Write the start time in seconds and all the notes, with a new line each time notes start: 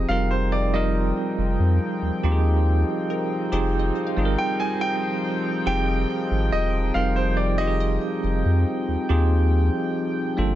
Already playing: F3 C4 D#4 F4 G4 G#4 D#5 G5
0.09 F1 G3 C4 D#4 F4 A#4 F5
0.31 C5
0.52 D5
0.74 G3 C4 D#4 F4 A#4 D#5
1.38 F1
1.59 F2
2.02 D#2
2.23 D#2 C4 D#4 F4 G4
2.32 G#4
3.10 A#4
3.52 F1 C4 D#4 F4 G4 G#4 C5
3.79 D#5
4.07 F5
4.17 G1 G3 C4 D#4 F4 G#4
4.25 A#4
4.38 G5
4.60 G#5
4.81 G5
5.66 F1 C4 D#4 F4 G4 G#4 G5
6.31 G#1
6.52 E1 D#5
6.94 F1 G3 C4 D#4 F4 A#4 F5
7.16 C5
7.37 D5
7.58 C4 D#4 F4 G4 D#5
7.67 G#4
7.80 D#5
8.24 F1
8.45 F2
8.88 D#2
9.09 D#2 C4 D#4 F4 G4 G#4
10.37 G1 G3 A#3 D4 F4 A4